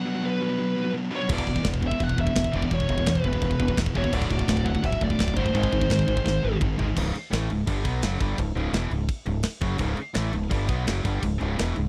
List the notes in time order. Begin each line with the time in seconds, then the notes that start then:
Already playing: B2 F#3 B3 D4 F#4 B4 F#5
0.06 B2 F#3
0.15 B2 F#3
0.23 B2 F#3 B4
0.41 B2 F#3
0.49 B2 F#3
0.58 B2 F#3
0.76 B2 F#3
0.84 B2 F#3
0.94 B2 F#3
1.11 B2 F#3 B3 D4 F#4 B4
1.16 C#5
1.21 B2 F#3
1.29 E1 E2 B2 E3 G#3 B3 E4, kick, china, crash
1.33 D5
1.38 kick
1.46 E1 E2 B2, kick
1.54 E2 B2, kick
1.63 E1 E2 B2, kick, snare, china
1.74 kick
1.81 E2 B2, kick
1.87 E2 B2 E5
1.91 kick
1.99 E1 E2 B2, kick, china
2.03 F#5
2.09 kick
2.16 E1 E2 B2 E5, kick
2.26 E2 B2, kick
2.35 E1 E2 B2, kick, snare, china
2.44 kick
2.52 E1 E2 B2 E3 G#3 B3 E4 D5, kick
2.56 E2 B2
2.62 E2 B2, kick
2.71 E1 E2 B2 E3 G#3 B3 E4 C#5, kick, china
2.80 kick
2.88 E1 E2 B2, kick
2.97 E2 B2, kick
3.06 E2 B2 B4, kick, snare, china
3.15 kick
3.24 E1 E2 B2, kick
3.33 E2 B2, kick
3.42 E1 E2 B2, kick, china
3.51 kick
3.59 E1 E2 B2, kick
3.68 E2 B2, kick
3.77 E1 E2 B2, kick, snare, china
3.86 kick
3.95 E1 E2 B2 E3 G#3 B3 E4 C#5, kick
4.03 E2 B2, kick
4.11 D1 D2 A2 D3 F#3 F#4 D5, kick, china, crash
4.22 kick
4.30 D1 D2 A2, kick
4.39 D2 A2, kick
4.48 D1 D2 A2, kick, snare, china
4.57 kick
4.65 D2 A2 F#5, kick
4.74 D2 A2, kick
4.83 D1 D2 A2 E5, kick, china
4.92 kick
5.01 D1 D2 A2 D5, kick
5.10 D2 A2, kick
5.19 D1 D2 A2, kick, snare, china
5.28 kick
5.36 G1 D2 A2 D3 F#3 F#4 C5, kick
5.46 D2 A2, kick
5.53 G#1 G#2 D#3 G#3 C4 D#4 G#4, kick, china
5.63 kick
5.72 G#1 G#2 D#3, kick
5.80 G#2 D#3, kick
5.89 G#2 D#3, kick, snare, china
5.99 kick
6.08 G#1 G#2 D#3, kick
6.16 G#2 D#3, kick
6.24 G#1 G#2 D#3, kick, snare
6.43 G#1 G#2 D#3
6.53 G#2 D#3
6.61 G#1 G#2 D#3, kick, mid tom
6.78 G#1 G#2 D#3 G#3 C4 D#4 G#4, floor tom
6.88 G#2 D#3
6.97 C#1 C#2 G#2 C#3, kick, crash
7.15 muted distorted electric guitar stroke, muted fingered electric bass stroke, crash
7.31 A1 A2 E3 A3, snare, crash
7.50 C#1 C#2 G#2, crash
7.67 G1 G2 D3 G3, kick, crash
7.85 B1 B2 F#3 B3, kick, crash
8.02 F#1 F#2 C#3 F#3, snare, crash
8.20 G1 G2 D3 G3, kick, crash
8.38 C#1 C#2 G#2, kick, crash
8.55 C#1 C#2 G#2 C#3, crash
8.73 E1 E2 B2 E3, snare, crash
8.90 C#1 C#2 G#2, crash
9.09 kick, crash
9.26 C#1 C#2 G#2, crash
9.43 snare, crash
9.61 F#1 F#2 C#3 F#3, kick, crash
9.78 C#1 C#2 G#2 C#3, kick, crash
9.97 muted distorted electric guitar stroke, crash
10.14 A1 A2 E3 A3, snare, crash
10.33 C#1 C#2 G#2, crash
10.50 G1 G2 D3 G3, kick, crash
10.67 B1 B2 F#3 B3, kick, crash
10.85 F#1 F#2 C#3 F#3, snare, crash
11.03 G1 G2 D3 G3, kick, crash
11.21 C#1 C#2 G#2, kick, crash
11.38 C#1 C#2 G#2 C#3, crash
11.56 E1 E2 B2 E3, snare, crash
11.75 C#1 C#2 G#2, crash